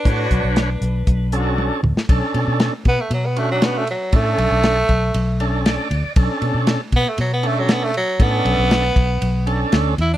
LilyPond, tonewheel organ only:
\new Staff \with { instrumentName = "Tonewheel organ" } { \time 4/4 \key b \minor \tempo 4 = 118 << { r1 | r1 | r2. d''4 | r1 |
r1 | } \\ { <d' b' cis''>4~ <d' b' cis''>16 r4 r16 <cis' d' a'>4 r8 | <cis' d' a'>4~ <cis' d' a'>16 r4 r16 <cis' d' fis'>4 r8 | <cis' d' a'>4~ <cis' d' a'>16 r4 r16 <cis' d' a'>4 r8 | <cis' d' a'>4~ <cis' d' a'>16 r4 r16 <cis' d' a'>4 r8 |
<cis' d' a'>4~ <cis' d' a'>16 r4 r16 <cis' d' a'>4 r8 | } >> }